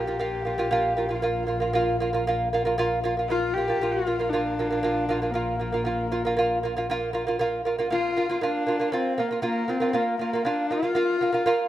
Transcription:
0.00 3.79 A#1 medium
0.00 1.12 G4 medium
0.07 0.18 A#3 medium
0.07 0.19 F4 medium
0.19 0.41 A#3 medium
0.19 0.41 F4 medium
0.45 0.56 A#3 medium
0.45 0.57 F4 medium
0.58 0.69 A#3 medium
0.58 0.70 F4 medium
0.71 0.92 A#3 loud
0.71 0.93 F4 loud
0.97 1.08 A#3 medium
0.97 1.08 F4 medium
1.09 1.20 A#3 medium
1.09 1.21 F4 medium
1.14 2.61 F4 medium
1.22 1.43 A#3 medium
1.22 1.44 F4 medium
1.47 1.58 A#3 medium
1.47 1.59 F4 medium
1.60 1.71 A#3 medium
1.60 1.72 F4 medium
1.73 1.95 A#3 loud
1.73 1.96 F4 loud
2.00 2.11 A#3 medium
2.00 2.11 F4 medium
2.13 2.23 A#3 medium
2.13 2.24 F4 medium
2.27 2.47 A#3 loud
2.27 2.48 F4 loud
2.53 2.63 A#3 medium
2.53 2.63 F4 medium
2.65 2.75 A#3 medium
2.65 2.76 F4 medium
2.78 2.98 A#3 loud
2.78 2.99 F4 loud
3.04 3.14 A#3 medium
3.04 3.14 F4 medium
3.17 3.27 A#3 medium
3.17 3.28 F4 medium
3.29 3.50 A#3 medium
3.29 3.55 F4 medium
3.29 3.51 F4 medium
3.54 3.66 A#3 medium
3.54 3.93 G4 medium
3.58 3.66 F4 medium
3.68 3.78 A#3 medium
3.68 3.79 F4 medium
3.80 7.95 A#1 medium
3.80 4.01 A#3 medium
3.80 4.02 F4 medium
3.92 4.31 F4 medium
4.07 4.16 A#3 medium
4.07 4.17 F4 medium
4.19 4.29 A#3 medium
4.19 4.30 F4 medium
4.29 4.53 A#3 medium
4.29 5.32 D4 medium
4.34 4.53 F4 medium
4.59 4.68 A#3 medium
4.59 4.69 F4 medium
4.71 4.80 A#3 medium
4.71 4.81 F4 medium
4.83 5.03 A#3 medium
4.83 5.04 F4 medium
5.09 5.19 A#3 medium
5.09 5.20 F4 medium
5.22 5.32 A#3 medium
5.22 5.32 F4 medium
5.31 7.01 A#3 medium
5.31 5.54 A#3 medium
5.35 5.55 F4 medium
5.59 5.70 A#3 medium
5.59 5.70 F4 medium
5.72 5.83 A#3 medium
5.72 5.83 F4 medium
5.85 6.06 A#3 medium
5.85 6.06 F4 medium
6.12 6.22 A#3 medium
6.12 6.22 F4 medium
6.25 6.35 A#3 medium
6.25 6.35 F4 medium
6.37 6.57 A#3 medium
6.37 6.58 F4 loud
6.63 6.73 A#3 medium
6.63 6.74 F4 medium
6.77 6.86 A#3 medium
6.77 6.87 F4 medium
6.90 7.09 A#3 loud
6.90 7.10 F4 loud
7.13 7.23 A#3 medium
7.13 7.24 F4 medium
7.27 7.37 A#3 medium
7.27 7.37 F4 medium
7.39 7.60 A#3 loud
7.39 7.60 F4 loud
7.65 7.75 A#3 medium
7.65 7.76 F4 medium
7.79 7.88 A#3 medium
7.79 7.89 F4 medium
7.90 8.11 A#3 medium
7.90 8.34 F4 loud
7.90 8.12 F4 loud
8.16 8.26 A#3 medium
8.16 8.27 F4 medium
8.30 8.39 A#3 medium
8.30 8.40 F4 medium
8.34 8.44 F4 medium
8.41 8.62 A#3 medium
8.41 8.94 D4 medium
8.41 8.63 F4 loud
8.67 8.77 A#3 medium
8.67 8.78 F4 medium
8.80 8.90 A#3 medium
8.80 8.90 F4 medium
8.92 9.12 A#3 medium
8.92 9.21 C4 medium
8.92 9.13 F4 loud
9.18 9.28 A#3 medium
9.18 9.43 A#3 medium
9.18 9.29 F4 medium
9.31 9.41 A#3 medium
9.31 9.42 F4 medium
9.42 9.63 A#3 medium
9.42 9.70 A#3 medium
9.42 9.63 F4 loud
9.68 9.78 A#3 medium
9.68 9.96 C4 medium
9.68 9.79 F4 medium
9.80 9.91 A#3 medium
9.80 9.92 F4 medium
9.93 10.14 A#3 medium
9.93 10.19 A#3 medium
9.93 10.15 F4 loud
10.19 10.30 A#3 medium
10.19 10.47 A#3 medium
10.19 10.31 F4 medium
10.33 10.43 A#3 medium
10.33 10.44 F4 medium
10.45 10.65 A#3 medium
10.45 10.72 D4 medium
10.45 10.66 F4 loud
10.70 10.81 A#3 medium
10.70 11.68 F4 medium
10.70 10.81 F4 medium
10.83 10.93 A#3 medium
10.83 10.94 F4 medium
10.95 11.16 A#3 loud
10.95 11.16 F4 loud
11.21 11.31 A#3 medium
11.21 11.32 F4 medium
11.32 11.43 A#3 medium
11.32 11.44 F4 medium
11.46 11.67 A#3 loud
11.46 11.67 F4 loud

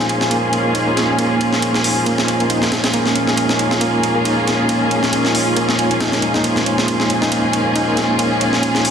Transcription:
0.00 8.90 A#2 medium
0.00 8.90 F3 medium
0.00 8.90 G#3 medium
0.00 0.30 A#3 medium
0.00 2.91 A#3 medium
0.00 1.09 C#4 medium
0.00 2.91 C#4 medium
0.00 8.90 C#4 medium
0.00 0.20 D#4 medium
0.00 2.91 F4 medium
0.00 2.91 G#4 medium
0.00 2.93 C5 medium
0.09 ride medium
0.21 0.30 F4 medium
0.21 snare soft
0.30 0.42 A#3 medium
0.30 ride medium
0.53 ride medium
0.65 0.74 A#3 medium
0.75 0.85 D#4 medium
0.75 ride medium
0.87 0.96 A#3 medium
0.97 snare soft
0.97 ride medium
1.09 1.14 C#4 medium
1.18 1.39 A#3 medium
1.18 ride medium
1.40 1.47 C#4 medium
1.40 ride medium
1.53 snare soft
1.62 ride medium
1.74 1.95 D#4 medium
1.74 snare soft
1.84 open hi-hat medium
1.96 2.05 F4 medium
2.06 2.18 A#3 medium
2.06 ride medium
2.18 snare medium
2.28 ride medium
2.40 2.49 A#3 medium
2.40 ride soft
2.50 2.60 D#4 medium
2.50 ride medium
2.62 2.71 A#3 medium
2.62 snare soft
2.72 snare medium
2.72 ride medium
2.84 2.89 C#4 medium
2.84 snare medium
2.84 ride medium
2.94 3.15 A#3 medium
2.94 6.42 A#3 medium
2.94 6.42 C#4 medium
2.94 6.42 F4 medium
2.94 6.42 G#4 medium
2.94 6.43 A#4 medium
2.94 ride medium
3.06 snare soft
3.16 3.22 C#4 medium
3.16 ride medium
3.27 snare soft
3.37 ride medium
3.49 3.70 D#4 medium
3.49 snare soft
3.59 ride medium
3.71 snare soft
3.81 3.93 A#3 medium
3.81 ride medium
4.03 ride medium
4.15 4.24 A#3 medium
4.25 4.35 D#4 medium
4.25 ride medium
4.37 4.46 A#3 medium
4.48 snare soft
4.48 ride medium
4.59 4.64 C#4 medium
4.69 4.90 A#3 medium
4.69 ride medium
4.91 4.97 C#4 medium
4.91 ride medium
5.03 snare soft
5.13 ride medium
5.25 5.45 D#4 medium
5.25 snare soft
5.35 open hi-hat medium
5.47 5.56 F4 medium
5.56 5.68 A#3 medium
5.56 ride medium
5.69 snare medium
5.79 5.89 F4 medium
5.79 ride medium
5.91 5.99 D#4 medium
5.91 ride soft
6.00 6.11 D#4 medium
6.00 snare medium
6.00 ride medium
6.12 6.18 G#3 medium
6.12 snare soft
6.22 6.33 A#3 medium
6.22 ride medium
6.34 6.43 D#4 medium
6.34 snare soft
6.44 6.65 A#3 medium
6.44 8.90 A#3 medium
6.44 8.90 C#4 medium
6.44 8.90 F4 medium
6.44 8.90 G#4 medium
6.44 8.90 C5 medium
6.44 ride medium
6.56 snare soft
6.66 6.72 C#4 medium
6.66 ride medium
6.78 snare soft
6.88 ride medium
7.00 7.21 D#4 medium
7.00 snare soft
7.10 ride medium
7.22 7.30 D#4 medium
7.22 snare soft
7.32 7.43 A#3 medium
7.32 ride medium
7.53 ride medium
7.66 7.75 A#3 medium
7.75 7.86 D#4 medium
7.75 ride medium
7.87 7.97 A#3 medium
7.97 snare soft
7.97 ride medium
8.09 8.14 C#4 medium
8.19 8.40 A#3 medium
8.19 ride medium
8.41 8.47 C#4 medium
8.41 ride medium
8.53 snare soft
8.63 ride medium
8.75 8.90 D#4 medium
8.75 snare soft
8.85 open hi-hat medium

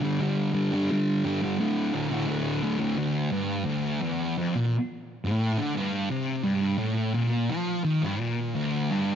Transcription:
0.02 0.19 G2 loud
0.02 0.19 D3 medium
0.02 0.21 G3 loud
0.20 0.51 G2 loud
0.20 0.54 D3 loud
0.20 0.53 G3 loud
0.52 0.71 G2 medium
0.52 0.72 D3 medium
0.52 0.73 G3 loud
0.72 0.90 G2 medium
0.72 0.90 D3 medium
0.72 0.91 G3 loud
0.91 1.23 G2 loud
0.91 1.24 D3 loud
0.91 1.25 G3 loud
1.24 1.41 G2 medium
1.24 1.42 D3 medium
1.24 1.44 G3 loud
1.43 1.58 G2 medium
1.43 1.58 D3 medium
1.43 1.59 G3 medium
1.60 1.93 D2 loud
1.60 1.93 A2 loud
1.60 1.94 D3 loud
1.94 2.09 D2 loud
1.94 2.11 A2 medium
1.94 2.11 D3 medium
2.10 2.26 D2 medium
2.10 2.26 A2 medium
2.10 2.28 D3 medium
2.27 2.61 D2 loud
2.27 2.62 A2 loud
2.27 2.63 D3 loud
2.62 2.78 D2 medium
2.62 2.78 A2 medium
2.62 2.79 D3 medium
2.79 2.96 D2 medium
2.79 2.96 A2 medium
2.79 2.97 D3 medium
2.97 3.31 D2 loud
3.32 3.64 G2 loud
3.65 4.00 D2 loud
4.02 4.36 E2 loud
4.38 4.54 F2 loud
4.56 4.72 A#2 loud
5.25 5.59 A2 loud
5.58 5.75 D3 loud
5.75 6.10 G2 loud
6.11 6.43 C3 loud
6.44 6.78 G2 loud
6.78 7.14 A2 loud
7.14 7.49 A#2 loud
7.50 7.84 F3 loud
7.84 8.02 D#3 loud
8.03 8.20 G2 loud
8.20 8.55 A#2 loud
8.55 8.91 D2 loud
8.91 9.15 G2 loud

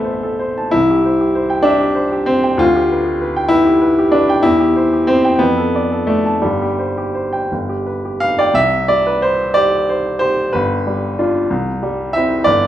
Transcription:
0.00 0.68 A1 medium
0.00 0.71 A3 medium
0.00 0.76 B3 medium
0.00 0.76 C4 medium
0.00 0.23 A4 soft
0.00 0.04 C5 medium
0.00 0.76 E5 medium
0.00 0.58 A5 soft
0.04 0.32 C5 soft
0.23 0.50 A4 medium
0.39 0.66 C5 medium
0.58 0.73 A5 medium
0.71 2.56 C2 medium
0.71 1.63 E4 loud
0.90 1.14 G4 medium
1.05 1.29 C5 soft
1.20 1.43 G4 medium
1.35 1.58 C5 medium
1.50 1.73 G5 medium
1.63 2.27 D4 loud
1.63 1.89 E5 medium
1.81 2.05 G4 medium
1.95 2.21 C5 medium
2.12 2.38 G4 medium
2.26 2.59 C4 loud
2.26 2.54 C5 medium
2.44 2.60 G5 medium
2.58 4.38 D2 medium
2.58 3.50 F4 loud
2.76 2.99 G4 medium
2.91 3.15 B4 medium
3.06 3.30 G4 medium
3.22 3.45 B4 medium
3.36 3.60 G5 medium
3.48 4.11 E4 loud
3.48 3.75 B4 medium
3.66 3.91 G4 medium
3.82 4.06 B4 medium
3.99 4.22 G4 medium
4.12 4.43 D4 medium
4.12 4.38 B4 medium
4.29 4.44 G5 medium
4.43 5.37 E2 medium
4.43 5.07 E4 loud
4.60 4.85 G4 medium
4.76 5.01 C5 medium
4.93 5.18 G4 medium
5.07 5.40 C4 loud
5.07 5.34 C5 medium
5.25 5.40 G5 medium
5.39 6.41 F2 medium
5.39 6.07 B3 loud
5.57 5.84 A4 medium
5.75 6.02 D5 medium
5.92 6.19 A4 medium
6.07 6.43 A3 medium
6.07 6.37 D5 medium
6.26 6.43 A5 medium
6.42 7.47 G1 medium
6.42 7.49 G3 medium
6.62 6.90 G4 soft
6.79 7.07 C5 medium
6.98 7.26 G4 soft
7.15 7.43 C5 medium
7.33 7.50 G5 medium
7.52 8.54 G1 medium
7.69 7.97 G4 soft
7.87 8.14 B4 soft
8.05 8.33 G4 soft
8.20 8.50 B4 soft
8.20 8.38 F5 loud
8.39 8.56 D5 medium
8.39 8.56 G5 medium
8.54 10.48 C2 medium
8.54 8.89 E5 loud
8.88 9.43 G3 soft
8.88 9.06 D5 medium
9.07 9.23 B4 medium
9.22 9.55 C5 medium
9.54 10.07 G4 medium
9.54 10.19 D5 loud
9.89 10.18 C5 medium
10.19 10.53 G4 medium
10.19 10.52 C5 loud
10.53 11.48 G1 medium
10.53 11.82 B4 medium
10.87 11.37 G3 medium
11.19 11.47 D4 medium
11.19 11.47 F4 medium
11.51 12.43 C2 medium
11.83 12.33 G3 medium
12.13 12.43 C4 medium
12.13 12.43 E4 medium
12.13 12.45 E5 loud
12.44 12.67 G1 medium
12.44 12.67 D5 loud

